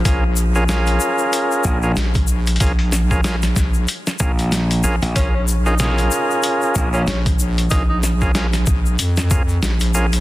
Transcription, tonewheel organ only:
X:1
M:4/4
L:1/16
Q:"Swing 16ths" 1/4=94
K:Bbm
V:1 name="Tonewheel organ"
[DFAB] z2 [DFAB] [DFAB]6- [DFAB] [DFAB] z4 | [DFAB] z2 [DFAB] [DFAB] z4 z [DFAB] z3 [DFAB] z | [DFAB] z2 [DFAB] [DFAB]6- [DFAB] [DFAB] z4 | [DFAB] z2 [DFAB] [DFAB] z4 z [DFAB] z3 [DFAB] z |]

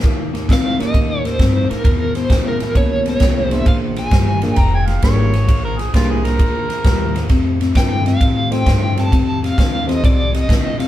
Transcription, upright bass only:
X:1
M:4/4
L:1/8
Q:"Swing" 1/4=132
K:Fdor
V:1 name="Upright bass" clef=bass
E,,2 _D,, z E,,2 G,, z | =E,,2 _E,, z ^C,,2 =C,,2 | B,,,2 G,,,2 F,,,2 A,,,2 | B,,,2 C,,2 D,,2 E,,2 |
F,,2 G,,2 =A,,2 G,,2 | F,,2 E,,2 C,,2 B,,,2 |]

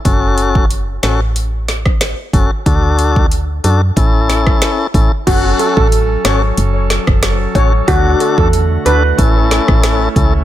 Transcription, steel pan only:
X:1
M:4/4
L:1/16
Q:1/4=92
K:F#m
V:1 name="Steel pan"
z16 | z16 | F z A A2 z c2 z6 c z | F z A A2 z B2 z8 |]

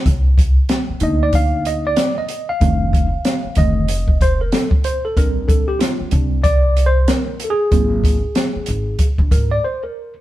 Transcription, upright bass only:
X:1
M:4/4
L:1/16
Q:"Swing 16ths" 1/4=94
K:Cdor
V:1 name="Upright bass" clef=bass
C,,4 z2 D,,6 z4 | F,,,4 z2 F,,,6 z4 | B,,,4 z2 C,,6 z4 | _A,,,4 z2 A,,,2 z B,,, _A,,2 z4 |]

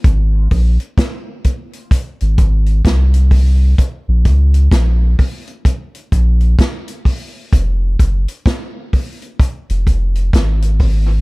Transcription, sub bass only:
X:1
M:4/4
L:1/16
Q:"Swing 16ths" 1/4=64
K:Bbm
V:1 name="Sub bass" clef=bass
A,,,2 B,,, z6 A,,, A,,,2 C,,4 | z B,,, D,,2 B,,,2 z4 B,,,2 z4 | F,,,2 G,,, z6 F,,, F,,,2 A,,,4 |]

